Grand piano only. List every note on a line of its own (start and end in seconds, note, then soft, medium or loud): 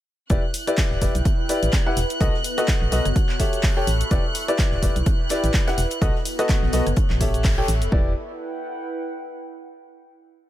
0.30 0.41 E4 medium
0.30 0.41 G4 medium
0.30 0.41 B4 medium
0.30 0.41 D5 loud
0.67 0.99 E4 medium
0.67 0.99 G4 medium
0.67 0.99 B4 medium
0.67 0.99 D5 loud
1.02 1.13 E4 medium
1.02 1.13 G4 medium
1.02 1.13 B4 medium
1.02 1.13 D5 loud
1.49 1.83 E4 medium
1.49 1.83 G4 medium
1.49 1.83 B4 medium
1.49 1.83 D5 loud
1.86 1.95 E4 loud
1.86 1.95 G4 medium
1.86 1.95 B4 medium
1.86 1.95 F#5 loud
2.21 2.32 F#4 medium
2.21 2.32 A4 medium
2.21 2.32 B4 medium
2.21 2.32 D#5 loud
2.58 2.90 F#4 loud
2.58 2.90 A4 medium
2.58 2.90 B4 medium
2.58 2.90 D#5 loud
2.92 3.03 F#4 medium
2.92 3.03 A4 medium
2.92 3.03 B4 medium
2.92 3.03 D#5 loud
3.40 3.74 G4 medium
3.40 3.74 A4 medium
3.40 3.74 C#5 medium
3.40 3.74 E5 loud
3.77 3.85 G4 loud
3.77 3.85 A4 medium
3.77 3.85 C#5 medium
3.77 3.85 G5 loud
4.11 4.22 E4 loud
4.11 4.22 G4 medium
4.11 4.22 B4 medium
4.11 4.22 D5 loud
4.48 4.80 E4 loud
4.48 4.80 G4 medium
4.48 4.80 B4 medium
4.48 4.80 D5 loud
4.83 4.94 E4 medium
4.83 4.94 G4 medium
4.83 4.94 B4 medium
4.83 4.94 D5 loud
5.30 5.64 E4 medium
5.30 5.64 G4 medium
5.30 5.64 B4 medium
5.30 5.64 D5 loud
5.67 5.76 E4 loud
5.67 5.76 G4 medium
5.67 5.76 B4 medium
5.67 5.76 F#5 loud
6.02 6.13 F#4 loud
6.02 6.13 A4 medium
6.02 6.13 B4 medium
6.02 6.13 D#5 loud
6.39 6.71 F#4 medium
6.39 6.71 A4 medium
6.39 6.71 B4 medium
6.39 6.71 D#5 loud
6.73 6.84 F#4 medium
6.73 6.84 A4 medium
6.73 6.84 B4 medium
6.73 6.84 D#5 loud
7.21 7.55 G4 medium
7.21 7.55 A4 medium
7.21 7.55 C#5 medium
7.21 7.55 E5 loud
7.58 7.66 G4 loud
7.58 7.66 A4 medium
7.58 7.66 C#5 medium
7.58 7.66 G5 loud
7.92 8.10 E4 medium
7.92 8.10 G4 medium
7.92 8.10 B4 medium
7.92 8.10 D5 loud